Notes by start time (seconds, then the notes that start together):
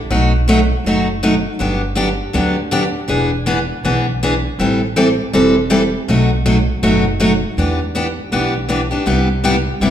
0.10 B1 B2 F#3 A3 D#4 F#4
0.48 B2 F#3 A3 D#4 F#4
0.84 F#1 B2 F#3 A3 D#4 F#4
1.23 B2 F#3 A3 D#4 F#4
1.59 G1 D3 F#3 B3 D4 G4
1.95 D3 F#3 B3 D4 G4
2.33 D2 D3 F#3 B3 D4 G4
2.71 D3 F#3 B3 D4 G4
3.08 E1 E3 B3 D4 G#4
3.46 E3 B3 D4 G#4
3.84 B1 E3 B3 D4 G#4
4.23 E3 B3 D4 G#4
4.59 A1 E3 G3 C4 E4 A4
4.96 E3 G3 C4 E4 A4
5.33 E1 E3 G3 C4 E4 A4
5.70 E3 G3 C4 E4 A4
6.08 B1 B2 F#3 A3 D#4 F#4
6.46 B2 F#3 A3 D#4 F#4
6.82 F#1 B2 F#3 A3 D#4 F#4
7.20 B2 F#3 A3 D#4 F#4
7.57 E2 E3 B3 D4 G4
7.95 E3 B3 D4 G4
8.31 B1 E3 B3 D4 G4
8.69 E3 B3 D4 G4
8.91 B3 D4 G4
9.06 C2 C3 G3 B3 E4 G4
9.44 C3 G3 B3 E4 G4
9.80 G1 C3 G3 B3 E4 G4